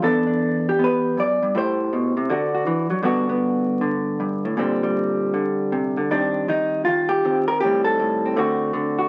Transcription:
0.02 1.17 E2 medium
0.02 0.78 B3 soft
0.02 0.26 D4 soft
0.02 0.67 A4 medium
0.27 1.53 D4 soft
0.69 1.19 G4 medium
0.79 1.54 B3 medium
0.84 1.19 B4 medium
1.17 1.42 F#2 medium
1.17 1.57 D5 medium
1.42 1.56 G2 medium
1.55 1.92 A2 medium
1.55 2.29 A3 soft
1.55 2.30 E4 soft
1.55 2.30 G4 soft
1.55 3.05 C5 medium
1.93 2.16 B2 medium
2.17 2.30 C3 medium
2.30 2.66 D3 medium
2.30 3.03 D4 soft
2.30 2.53 F#4 soft
2.55 3.04 F#4 soft
2.67 2.90 E3 medium
2.90 3.03 F#3 medium
3.03 4.17 G2 medium
3.03 3.80 D3 medium
3.03 3.28 B3 medium
3.03 4.55 D4 soft
3.03 4.55 F#4 medium
3.29 4.55 B3 soft
3.81 4.57 D3 medium
4.20 4.44 G2 medium
4.45 4.57 A2 medium
4.57 5.33 A#2 medium
4.57 5.33 D3 medium
4.57 4.82 G3 soft
4.57 6.10 C4 medium
4.83 6.11 G3 soft
5.34 5.96 D3 medium
5.72 5.98 C3 medium
5.97 6.11 D3 soft
6.11 6.47 D#3 medium
6.11 7.62 G3 soft
6.11 7.24 C4 soft
6.11 6.49 D4 medium
6.48 6.86 D#3 medium
6.48 6.84 D#4 medium
6.85 7.24 D#3 medium
6.85 7.49 F4 medium
7.09 7.47 G4 medium
7.25 7.61 D#3 medium
7.25 7.62 C4 soft
7.48 7.60 A#4 medium
7.60 7.99 A2 medium
7.60 8.36 D#3 soft
7.60 7.84 G4 loud
7.65 8.36 G3 soft
7.65 8.24 C4 soft
7.85 8.37 A4 medium
8.00 8.38 A2 medium
8.26 8.36 C4 soft
8.36 8.72 D3 medium
8.36 9.09 A3 medium
8.36 9.09 C4 medium
8.36 8.97 F#4 medium
8.73 9.09 D3 medium
8.99 9.09 F#4 medium

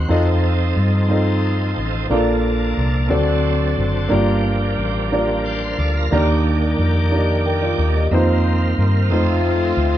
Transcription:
0.00 0.12 D#3 medium
0.00 0.09 C4 medium
0.00 0.09 D#4 medium
0.00 0.12 F#4 medium
0.00 0.26 F#4 medium
0.00 0.12 A#4 medium
0.00 0.11 D#5 medium
0.09 0.73 F2 medium
0.09 2.07 F3 medium
0.09 0.86 C4 medium
0.09 2.07 C4 medium
0.09 0.86 D#4 medium
0.09 2.07 D#4 medium
0.09 0.86 F4 medium
0.09 0.86 A4 medium
0.09 2.07 A4 medium
0.09 0.87 D#5 medium
0.76 1.73 G2 medium
1.08 1.86 C4 medium
1.08 1.86 D#4 medium
1.08 1.86 F4 soft
1.08 1.87 A4 soft
1.08 1.87 D#5 medium
1.78 2.08 A1 medium
2.10 2.73 A#1 medium
2.10 3.07 A#2 medium
2.10 3.11 F3 medium
2.10 2.86 A#3 medium
2.10 3.11 A#3 soft
2.10 2.87 D4 medium
2.10 3.10 D4 medium
2.10 2.87 F4 medium
2.10 2.17 G4 soft
2.10 2.87 A4 medium
2.10 2.88 D5 medium
2.17 3.09 A4 medium
2.77 3.08 C2 medium
3.09 3.74 D2 medium
3.09 4.07 D3 medium
3.09 4.11 F#3 medium
3.09 3.86 C4 medium
3.09 4.11 C4 medium
3.09 3.86 D4 medium
3.09 4.10 D4 medium
3.09 3.86 F#4 medium
3.09 4.11 A4 medium
3.09 3.87 A4 medium
3.09 3.87 D5 medium
3.77 4.08 F#1 medium
4.09 4.74 G1 medium
4.09 5.07 G2 medium
4.09 6.07 F3 medium
4.09 4.86 A#3 medium
4.09 6.07 A#3 medium
4.09 4.86 D4 medium
4.09 6.07 D4 medium
4.09 4.87 F4 medium
4.09 4.87 G4 medium
4.09 5.42 G4 medium
4.09 4.87 D5 medium
4.78 5.74 A1 medium
5.11 5.87 A#3 medium
5.11 5.88 D4 medium
5.11 5.88 F4 soft
5.11 5.88 G4 medium
5.11 5.88 D5 medium
5.45 5.61 D5 soft
5.45 5.61 F5 medium
5.45 5.61 G5 soft
5.63 5.78 C5 soft
5.63 5.78 F5 medium
5.78 6.09 D2 medium
5.78 5.94 A4 soft
5.78 5.94 D5 medium
5.78 6.10 F5 medium
5.97 6.28 F4 soft
5.97 6.28 A#4 medium
6.11 6.74 D#2 medium
6.11 7.08 D#3 medium
6.11 8.08 D#3 medium
6.11 6.87 A#3 medium
6.11 8.08 A#3 medium
6.11 6.87 D4 medium
6.11 6.88 D#4 medium
6.11 8.08 G4 medium
6.11 6.88 G4 medium
6.11 8.08 D5 medium
6.11 6.88 D5 medium
6.79 7.74 F2 medium
7.11 7.87 A#3 medium
7.11 7.87 D4 medium
7.11 7.87 D#4 medium
7.11 7.45 G4 soft
7.11 7.45 D5 medium
7.46 7.61 A#4 soft
7.46 7.61 G5 medium
7.62 7.93 F4 soft
7.62 7.93 D5 soft
7.78 8.09 D#2 medium
7.96 8.27 G4 soft
7.96 8.27 D#5 soft
8.11 8.73 F2 medium
8.11 9.11 D#3 medium
8.11 9.11 A#3 medium
8.11 8.87 A#3 medium
8.11 9.09 C4 medium
8.11 8.87 C4 medium
8.11 8.88 D#4 medium
8.11 8.17 E4 medium
8.11 8.88 F4 medium
8.11 8.88 C5 medium
8.17 9.10 F4 medium
8.78 9.11 G2 medium
9.10 9.73 F2 medium
9.10 9.86 A3 medium
9.10 9.98 A3 medium
9.10 9.98 A3 soft
9.10 9.98 C4 medium
9.10 9.86 C4 medium
9.10 9.98 C4 soft
9.10 9.98 D#4 medium
9.10 9.87 D#4 medium
9.10 9.98 F4 medium
9.10 9.87 F4 soft
9.10 9.87 C5 medium
9.77 9.98 D2 medium

